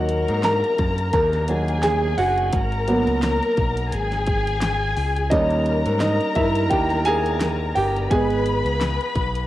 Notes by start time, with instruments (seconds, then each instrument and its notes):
Already playing: picked electric bass D#2, grand piano F#3 A#3 D#4 F#4 F#5, violin section A#4 A#5
0.09 closed hi-hat
0.28 picked electric bass G#2, closed hi-hat
0.43 grand piano A#4 A#5, snare, clap, closed hi-hat
0.64 closed hi-hat
0.78 picked electric bass F#2, kick, closed hi-hat
0.98 closed hi-hat
1.13 picked electric bass D#2, grand piano A#4 A#5, kick, closed hi-hat
1.33 snare, closed hi-hat
1.48 grand piano F#3 A#3 D#4, violin section G#4 G#5, closed hi-hat
1.68 closed hi-hat
1.82 grand piano G#4 G#5, snare, clap, closed hi-hat
2.18 picked electric bass F#1, grand piano F#4 F#5, open hi-hat
2.38 closed hi-hat
2.53 picked electric bass G#1, violin section A#4 A#5, kick, closed hi-hat
2.72 closed hi-hat
2.88 grand piano F#3 A#3 B3, closed hi-hat
3.07 picked electric bass C#2, closed hi-hat
3.22 snare, clap, closed hi-hat
3.43 closed hi-hat
3.57 picked electric bass B1, kick, closed hi-hat
3.77 closed hi-hat
3.92 picked electric bass G#1, violin section G#4 G#5, closed hi-hat
4.12 snare, closed hi-hat
4.27 kick, closed hi-hat
4.47 closed hi-hat
4.61 snare, clap, closed hi-hat
4.97 picked electric bass C#2, open hi-hat
5.16 closed hi-hat
5.30 picked electric bass D#2, grand piano G3 A#3 C#4 D#4 D#5, violin section A#4 A#5, kick, closed hi-hat
5.50 closed hi-hat
5.66 closed hi-hat
5.86 picked electric bass G#2, closed hi-hat
6.00 grand piano D#4 D#5, snare, clap, closed hi-hat
6.21 closed hi-hat
6.35 picked electric bass G2, grand piano E4 E5, kick, closed hi-hat
6.55 closed hi-hat
6.70 picked electric bass D#2, grand piano G4 G5, kick, closed hi-hat
6.90 snare, closed hi-hat
7.05 grand piano G#4 G#5, closed hi-hat
7.26 closed hi-hat
7.40 snare, clap, closed hi-hat
7.75 picked electric bass G1, grand piano G4 G5, open hi-hat
7.96 closed hi-hat
8.11 picked electric bass G#1, grand piano G#3 B3 G#4 G#5, violin section B4 B5, kick, closed hi-hat
8.30 closed hi-hat
8.46 closed hi-hat
8.65 picked electric bass C#2, closed hi-hat
8.81 snare, clap, closed hi-hat
9.01 closed hi-hat
9.16 picked electric bass B1, kick, closed hi-hat
9.36 closed hi-hat